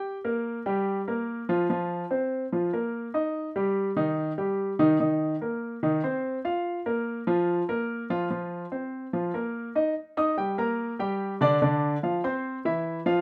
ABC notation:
X:1
M:4/4
L:1/8
Q:1/4=145
K:Eblyd
V:1 name="Grand piano"
[Gg] [B,B]2 [G,G]2 [B,B]2 [F,F] | [F,F]2 [Cc]2 [F,F] [B,B]2 [Ee]- | [Ee] [G,G]2 [E,E]2 [G,G]2 [E,E] | [E,E]2 [B,B]2 [E,E] [Cc]2 [Ff]- |
[Ff] [B,B]2 [F,F]2 [B,B]2 [F,F] | [F,F]2 [Cc]2 [F,F] [B,B]2 [Ee] | [K:Eb] z [Eee'] [G,Gg] [B,Bb]2 [G,Gg]2 [D,Dd] | [D,Dd]2 [F,Ff] [Ccc']2 [=E,=E=e]2 [F,Ff] |]